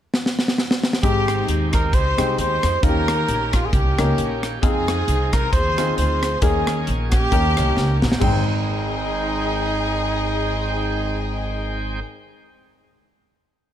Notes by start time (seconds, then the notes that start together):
0.14 snare
0.26 snare
0.39 snare
0.48 snare
0.58 snare
0.71 snare
0.83 snare
0.93 snare
1.02 G#1 G#2 D#3 G#3 C4 D#4 G4, kick, closed hi-hat
1.28 cross-stick, closed hi-hat
1.48 D#2, closed hi-hat
1.73 A#4, kick, cross-stick, closed hi-hat
1.93 C#2 D#4 G4 C5, kick, closed hi-hat
2.17 C2 G#3 C4 D#4 G4, cross-stick, closed hi-hat
2.38 D#2 D#4 G4 C5, closed hi-hat
2.63 F2, cross-stick, closed hi-hat
2.83 D#2 D#3 A#3 C#4 D#4 F4 F#4 G4 A#4, kick, closed hi-hat
2.88 G4
3.08 cross-stick, closed hi-hat
3.28 A#1, closed hi-hat
3.53 F4, kick, cross-stick, closed hi-hat
3.65 G#4
3.72 C2 A#3 C#4 G4, kick, closed hi-hat
3.98 C#2 A#3 C#4 D#4 A#4, cross-stick, closed hi-hat
4.18 A#1, closed hi-hat
4.43 cross-stick, closed hi-hat
4.61 F2 F3 C4 D#4 F4 G#4, kick, closed hi-hat
4.88 cross-stick, closed hi-hat
5.08 C2, closed hi-hat
5.33 A#4, kick, cross-stick, closed hi-hat
5.53 D#2 D#4 G#4 C5, kick, closed hi-hat
5.78 C4 D#4 F4 G#4, cross-stick, closed hi-hat
5.97 D2 D#4 G#4 C5, closed hi-hat
6.23 cross-stick, closed hi-hat
6.42 D#2 D#3 A#3 C#4 D#4 G4 G#4, kick, closed hi-hat
6.48 G#4
6.67 cross-stick, closed hi-hat
6.87 A#1, closed hi-hat
7.11 A#3 C#4 G4, kick, cross-stick, closed hi-hat
7.32 D#2 D#3 A#3 C#4 D#4 G4, kick, closed hi-hat
7.57 C2 A#3 C#4 D#4 A#4, cross-stick, closed hi-hat
7.77 C#2, snare
8.02 A#1, snare
8.12 snare
8.19 G#1 D#3 G#3 C4 D#4 G#4 G5, kick, floor tom, crash
8.23 G5